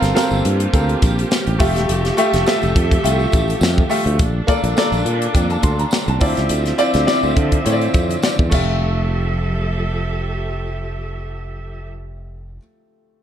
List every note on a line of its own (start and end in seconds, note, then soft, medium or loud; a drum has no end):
0.00 0.12 G1 loud
0.00 1.58 A#3 medium
0.00 0.14 C4 loud
0.00 1.58 F4 medium
0.00 4.16 G4 loud
0.00 0.15 A4 medium
0.00 0.15 A#4 medium
0.00 0.15 F5 loud
0.00 snare soft
0.00 closed hi-hat medium
0.00 tambourine soft
0.14 0.54 C4 medium
0.14 0.55 A4 medium
0.14 0.55 A#4 medium
0.14 0.55 F5 loud
0.14 snare loud
0.14 tambourine medium
0.31 0.41 G1 medium
0.31 tambourine medium
0.45 0.66 G2 loud
0.45 closed hi-hat medium
0.60 closed hi-hat medium
0.73 0.94 D2 medium
0.73 1.31 C4 medium
0.73 1.31 A4 medium
0.73 1.31 A#4 medium
0.73 1.31 F5 medium
0.73 kick medium
0.73 closed hi-hat medium
0.73 tambourine soft
0.89 closed hi-hat soft
1.02 1.23 A#1 medium
1.02 kick loud
1.02 closed hi-hat medium
1.02 tambourine medium
1.18 closed hi-hat soft
1.18 tambourine soft
1.31 snare loud
1.31 tambourine medium
1.46 1.57 A1 medium
1.46 closed hi-hat soft
1.59 1.76 F1 medium
1.59 4.17 F3 medium
1.59 2.06 A3 medium
1.59 2.07 F4 medium
1.59 2.07 G4 medium
1.59 4.17 A4 medium
1.59 4.17 E5 medium
1.59 2.07 E5 medium
1.59 kick loud
1.59 open hi-hat medium
1.59 tambourine soft
1.76 1.85 E1 medium
1.76 snare soft
1.76 closed hi-hat medium
1.89 2.10 F1 medium
1.89 closed hi-hat medium
1.89 tambourine soft
2.05 snare soft
2.05 closed hi-hat soft
2.17 2.37 A3 loud
2.17 2.38 F4 medium
2.17 2.38 G4 medium
2.17 2.38 E5 loud
2.17 closed hi-hat medium
2.17 tambourine soft
2.33 2.43 F1 loud
2.33 snare soft
2.33 closed hi-hat medium
2.46 2.86 A3 medium
2.46 2.86 F4 medium
2.46 2.86 G4 medium
2.46 2.86 E5 loud
2.46 snare loud
2.46 tambourine medium
2.61 2.73 F1 medium
2.61 closed hi-hat soft
2.61 tambourine soft
2.76 2.96 F2 loud
2.76 kick medium
2.76 closed hi-hat medium
2.91 kick medium
2.91 closed hi-hat medium
3.03 3.25 C2 medium
3.03 3.61 A3 medium
3.03 3.62 F4 medium
3.03 3.62 G4 medium
3.03 3.62 E5 medium
3.03 closed hi-hat medium
3.03 tambourine soft
3.19 tambourine soft
3.32 3.54 A1 medium
3.32 kick medium
3.32 closed hi-hat medium
3.32 tambourine medium
3.48 closed hi-hat soft
3.48 tambourine soft
3.61 3.82 F2 loud
3.61 snare loud
3.61 tambourine medium
3.78 kick medium
3.89 4.19 A3 medium
3.89 4.19 F4 medium
3.89 4.19 G4 medium
3.89 4.19 E5 loud
3.89 open hi-hat medium
3.89 tambourine medium
4.06 4.21 D2 medium
4.06 closed hi-hat soft
4.19 4.40 A#1 medium
4.19 6.19 A#3 medium
4.19 6.19 D4 medium
4.19 6.20 A4 medium
4.19 kick loud
4.19 closed hi-hat medium
4.19 tambourine soft
4.47 4.68 A#3 loud
4.47 4.68 F4 medium
4.47 4.68 A4 medium
4.47 4.69 D5 loud
4.47 kick loud
4.47 closed hi-hat medium
4.47 tambourine soft
4.63 4.73 A#1 loud
4.63 closed hi-hat medium
4.63 tambourine soft
4.76 5.16 A#3 medium
4.76 5.16 F4 medium
4.76 5.16 A4 medium
4.76 5.17 D5 loud
4.76 snare loud
4.76 tambourine medium
4.92 5.02 A#1 loud
4.92 closed hi-hat soft
4.92 tambourine medium
5.05 5.26 A#2 loud
5.05 closed hi-hat medium
5.22 closed hi-hat medium
5.34 5.56 F2 medium
5.34 5.49 G5 medium
5.34 kick medium
5.34 closed hi-hat medium
5.34 tambourine medium
5.50 5.63 A5 medium
5.50 closed hi-hat soft
5.50 tambourine soft
5.62 5.84 D2 medium
5.62 5.78 C6 medium
5.62 kick medium
5.62 closed hi-hat medium
5.62 tambourine soft
5.78 6.07 A#5 medium
5.78 closed hi-hat soft
5.78 tambourine soft
5.91 snare loud
5.91 tambourine medium
6.08 6.18 C2 medium
6.08 6.36 A5 medium
6.08 closed hi-hat soft
6.20 6.32 D2 medium
6.20 8.50 D3 medium
6.20 8.50 F3 medium
6.20 6.68 C4 medium
6.20 8.50 C4 medium
6.20 6.68 E4 medium
6.20 6.68 F4 medium
6.20 6.68 D5 medium
6.20 8.50 E5 medium
6.20 kick medium
6.20 open hi-hat medium
6.20 tambourine soft
6.37 6.47 C#2 medium
6.37 snare soft
6.37 closed hi-hat soft
6.49 6.71 D2 medium
6.49 closed hi-hat loud
6.49 tambourine soft
6.65 snare soft
6.65 closed hi-hat soft
6.78 6.98 C4 loud
6.78 6.99 E4 medium
6.78 6.99 F4 medium
6.78 6.99 D5 loud
6.78 closed hi-hat medium
6.78 tambourine medium
6.93 7.04 D2 loud
6.93 snare soft
6.93 closed hi-hat medium
6.93 tambourine soft
7.06 7.46 C4 medium
7.06 7.47 E4 medium
7.06 7.47 F4 medium
7.06 7.47 D5 loud
7.06 snare loud
7.06 tambourine medium
7.23 7.33 D2 medium
7.23 tambourine soft
7.37 7.58 D3 medium
7.37 kick medium
7.37 closed hi-hat medium
7.52 kick medium
7.52 closed hi-hat medium
7.65 7.87 A2 medium
7.65 8.23 C4 medium
7.65 8.23 E4 medium
7.65 8.23 F4 medium
7.65 7.73 C#5 medium
7.65 closed hi-hat medium
7.65 tambourine soft
7.72 8.22 D5 medium
7.81 closed hi-hat soft
7.81 tambourine soft
7.94 8.15 F2 medium
7.94 kick medium
7.94 closed hi-hat medium
7.94 tambourine soft
8.10 closed hi-hat soft
8.10 tambourine soft
8.22 8.51 D5 medium
8.22 snare loud
8.22 tambourine medium
8.39 8.51 E2 medium
8.39 kick medium
8.50 12.58 F1 loud
8.50 11.88 F3 medium
8.50 12.57 A3 medium
8.50 12.57 F4 medium
8.50 11.87 G4 medium
8.50 12.58 G4 medium
8.50 11.87 A4 medium
8.50 11.87 E5 medium
8.50 kick medium
8.50 crash medium
8.50 tambourine medium
8.54 12.59 E5 medium